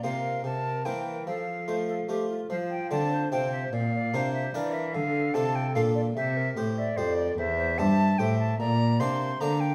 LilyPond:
<<
  \new Staff \with { instrumentName = "Flute" } { \time 3/4 \key f \major \tempo 4 = 148 f''4 a''4 g''4 | f''2 r4 | f''8 g''8 a''4 g''8 e''8 | f''4. e''8 d''8 e''8 |
f''4 a''8 g''8 f''8 d''8 | e''4. d''8 c''8 d''8 | e''4 a''4 g''8 a''8 | bes''4 c'''4 bes''8 g''8 | }
  \new Staff \with { instrumentName = "Recorder" } { \time 3/4 \key f \major bes'4 bes'4 bes'4 | a'4 c''8 a'8 g'8 f'8 | c''4 d''8 c''8 c''4 | d''8 d''8 c''4 bes'4 |
a'8 a'2~ a'8 | c''8 bes'8 c''8 e''8 d''4 | c''8 c''8 e''4 e''4 | d''4 c''4. r8 | }
  \new Staff \with { instrumentName = "Harpsichord" } { \time 3/4 \key f \major <bes f' c''>4 r4 <bes e' c''>4 | r4 <a f' c''>4 <a f' c''>4 | r4 <c' f' c''>4 <c' f' c''>4 | r4 <d' f' bes'>4 <d' bes' f''>4 |
r4 <d' f' a'>4 <d' f' a'>4 | r4 <g' c''>4 <g' c''>4 | r4 <g' c''>4 <g' c''>4 | r4 <bes d' d''>4 <bes d' d''>4 | }
  \new Staff \with { instrumentName = "Harpsichord" } { \clef bass \time 3/4 \key f \major c4 c4 e4 | f2~ f8 r8 | f4 d4 c4 | bes,4 c4 e4 |
d4 c4 bes,4 | c4 a,4 f,4 | e,4 g,4 a,4 | bes,4 c4 d4 | }
  \new Staff \with { instrumentName = "Cello" } { \clef bass \time 3/4 \key f \major c4 c4 e4 | f2~ f8 r8 | f4 d4 c4 | bes,4 c4 e4 |
d4 c4 bes,4 | c4 a,4 f,4 | e,4 g,4 a,4 | bes,4 c4 d4 | }
>>